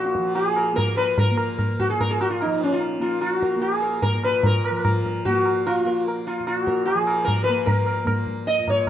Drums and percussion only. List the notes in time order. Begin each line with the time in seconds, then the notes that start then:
0.05 tabla te
0.15 tabla ke
0.25 tabla te
0.35 tabla tin
0.56 tabla na
0.78 tabla tin, tabla ge
0.98 tabla na
1.18 tabla tin, tabla ge
1.37 tabla na
1.59 tabla na, tabla ge
1.79 tabla ge
2.00 tabla tin, tabla ge
2.21 tabla na
2.41 tabla na
2.61 tabla te
2.81 tabla tin
3.01 tabla na
3.22 tabla na
3.42 tabla ke
3.63 tabla tin
3.84 tabla na
4.02 tabla tin, tabla ge
4.24 tabla na
4.43 tabla tin, tabla ge
4.65 tabla na
4.85 tabla na, tabla ge
5.05 tabla ge
5.25 tabla tin, tabla ge
5.46 tabla na
5.67 tabla na
5.87 tabla te
6.08 tabla tin
6.28 tabla na
6.47 tabla na
6.67 tabla ke
6.87 tabla tin
7.07 tabla na
7.28 tabla tin, tabla ge
7.47 tabla na
7.67 tabla tin, tabla ge
7.86 tabla na
8.07 tabla na, tabla ge
8.27 tabla ge
8.47 tabla te
8.68 tabla tin, tabla ge